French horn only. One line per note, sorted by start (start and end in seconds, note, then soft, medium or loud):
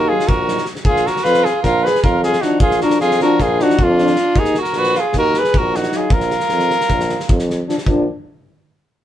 0.11 0.26 D#4 medium
0.47 0.62 D#4 medium
2.43 2.59 D4 medium
2.81 2.97 D4 medium
3.22 3.38 D4 medium
3.61 3.77 D4 medium
4.01 4.15 D4 medium
5.92 6.08 D#4 medium
7.68 7.75 D4 medium
7.87 8.06 D4 medium